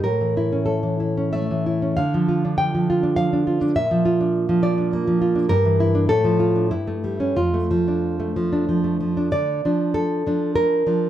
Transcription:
\new Staff \with { instrumentName = "Nylon-string guitar" } { \time 3/4 \key d \minor \tempo 4 = 98 << { bes'4 a'4 e''4 | f''4 g''4 f''4 | e''4. d''8 r4 | bes'4 a'4 e'4 |
f'2 r4 | d''4 a'4 bes'4 | } \\ { a,16 e16 e'16 cis'8 e16 e'16 cis'16 a16 e16 e'16 cis'16 | d16 f16 f'16 d'8 f16 f'16 d'16 f16 d'16 f'16 d'16 | bes,16 f16 f'16 d'8 f16 f'16 d'16 bes16 f16 f'16 d'16 | g,16 e16 e'16 d'16 a,16 f16 f'16 d'16 g,16 a16 g16 cis'16 |
f,16 a16 f16 d'8 a16 f16 d'16 f16 a16 f16 d'16 | d8 <f d'>4 <f d'>4 <f d'>8 | } >> }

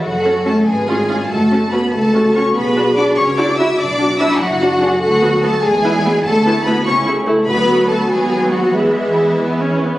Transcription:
<<
  \new Staff \with { instrumentName = "Violin section" } { \time 6/8 \key fis \minor \tempo 4. = 97 fis''4 a''8 gis''4. | a''4 b''8 a''4 cis'''8 | b''4 d'''8 cis'''8 d'''8 e'''8 | d'''4 e'''8 fis''4. |
\key e \mixolydian fis''4 a''8 gis''4. | a''4 b''8 cis'''8 r4 | b''4 a''8 gis''4 fis''8 | e''2~ e''8 r8 | }
  \new Staff \with { instrumentName = "Violin section" } { \time 6/8 \key fis \minor fis'4 a'8 gis'4. | a'4 b'8 a'4 cis''8 | b'4 d''8 cis''8 d''8 e''8 | d''4 e''8 fis'4. |
\key e \mixolydian fis'4 a'8 gis'4. | a'4 b'8 cis''8 r4 | b'4 a'8 gis'4 fis'8 | e'2~ e'8 r8 | }
  \new Staff \with { instrumentName = "French horn section" } { \time 6/8 \key fis \minor a'4. b'8 gis'8 eis'8 | fis'4. a'4. | gis'4. fis'4. | d'4. e'8 fis'8 gis'8 |
\key e \mixolydian a'4. gis'8 e'8 gis'8 | fis'4. e'8 gis'8 a'8 | fis'2. | gis'2~ gis'16 r8. | }
  \new Staff \with { instrumentName = "Viola section" } { \time 6/8 \key fis \minor r8 <cis' a'>8 <cis' a'>8 r8 <cis' eis'>8 <cis' eis'>8 | r8 <cis' fis'>8 <cis' fis'>8 r8 <cis' fis'>8 <cis' fis'>8 | r8 <d' fis'>8 <d' fis'>8 r8 <e' fis'>8 <e' fis'>8 | r8 <d' fis'>8 <d' fis'>8 r8 <d' fis'>8 <d' fis'>8 |
\key e \mixolydian r8 <b fis'>8 <b fis'>8 r8 <b e'>8 <b e'>8 | r8 <b e'>8 <b e'>8 r8 <a e'>8 <a e'>8 | <fis b>4. <fis b>4. | <gis b>4. b8 cis'8 b8 | }
  \new Staff \with { instrumentName = "Cello section" } { \time 6/8 \key fis \minor fis4 a8 gis4. | a4 b8 a4 cis'8 | b4 d'8 cis'8 d'8 e'8 | d'4 e'8 fis4. |
\key e \mixolydian fis4 a8 gis4. | a4 b8 cis'8 r4 | b4 a8 gis4 fis8 | e2~ e8 r8 | }
  \new Staff \with { instrumentName = "Double bass section" } { \clef bass \time 6/8 \key fis \minor fis,,4. gis,,4. | fis,,4. cis,4. | b,,4. cis,4. | b,,4. fis,,4. |
\key e \mixolydian d,4. e,4. | d,4. cis,4. | d,4. dis,4. | e,2~ e,8 r8 | }
>>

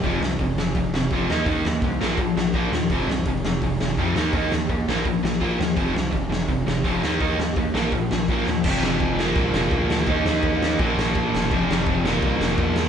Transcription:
<<
  \new Staff \with { instrumentName = "Overdriven electric guitar" } { \clef bass \time 4/4 \key bes \major \tempo 4 = 167 <f, c f>8 <f, c>8 <f, c>8 <f, c>8 <f, c>8 <f, c>8 <f, c f>8 <ees bes ees'>8 | <ees bes ees'>8 <ees bes>8 <ees bes>8 <bes, f bes>8 <bes, f>8 <bes, f>8 <bes, f bes>8 <bes, f>8 | <f, c f>8 <f, c>8 <f, c>8 <f, c>8 <f, c>8 <f, c>8 <f, c f>8 <ees bes ees'>8 | <ees bes ees'>8 <ees bes>8 <ees bes>8 <bes, f bes>8 <bes, f>8 <bes, f>8 <bes, f bes>8 <bes, f>8 |
<f, c f>8 <f, c>8 <f, c>8 <f, c>8 <f, c>8 <f, c>8 <f, c f>8 <ees bes ees'>8 | <ees bes ees'>8 <ees bes>8 <ees bes>8 <bes, f bes>8 <bes, f>8 <bes, f>8 <bes, f bes>8 <bes, f>8 | \key bes \lydian <f, c f>4. <bes, f bes>2~ <bes, f bes>8 | <ees bes ees'>2 <bes, f bes>2 |
<f, c f>4. <bes, f bes>2~ <bes, f bes>8 | }
  \new Staff \with { instrumentName = "Analog synth bass" } { \clef bass \time 4/4 \key bes \major f,,8 c,8 f,,8 f,,8 f,,8 f,,8 f,,8 ees,8 | ees,8 ees,8 c,8 bes,,8 bes,,8 bes,,8 bes,,8 ees,8 | f,,8 c,8 f,,8 f,,8 f,,8 f,,8 f,8 ees,8 | ees,8 ees,8 ees,8 bes,,8 bes,,8 bes,,8 bes,,8 ees,8 |
f,,8 c,8 f,,8 f,,8 f,,8 f,,8 f,,8 ees,8 | ees,8 ees,8 ees,8 bes,,8 bes,,8 bes,,8 bes,,8 ees,8 | \key bes \lydian f,,8 f,,8 f,,8 f,,8 c,8 f,,8 d,4 | ees,8 ees,8 ees,4 bes,,8 bes,,8 bes,,8 e,,8 |
f,,8 f,,8 f,,8 f,,8 c,8 f,,8 e,4 | }
  \new DrumStaff \with { instrumentName = "Drums" } \drummode { \time 4/4 <hho bd>8 sn8 <hho bd>8 sn8 <hho bd>8 sn8 <hho bd>8 sn8 | <hho bd>8 sn8 <hho bd>8 sn8 <hho bd>8 sn8 <hho bd>8 sn8 | <hho bd>8 sn8 <hho bd>8 sn8 <hho bd>8 sn8 <hho bd>8 sn8 | <hho bd>8 sn8 <hho bd>8 sn8 <hho bd>8 sn8 <hho bd>8 sn8 |
<hho bd>8 sn8 <hho bd>8 sn8 <hho bd>8 sn8 <hho bd>8 sn8 | <hho bd>8 sn8 <hho bd>8 sn8 <hho bd>8 sn8 <hho bd>8 sn8 | <cymc bd>8 sn8 <cymc bd>8 sn8 <cymc bd>8 sn8 <cymc bd>8 sn8 | <cymc bd>8 sn8 <cymc bd>8 sn8 <cymc bd>8 sn8 <cymc bd>8 sn8 |
<cymc bd>8 sn8 <cymc bd>8 sn8 <cymc bd>8 sn8 <cymc bd>8 sn8 | }
>>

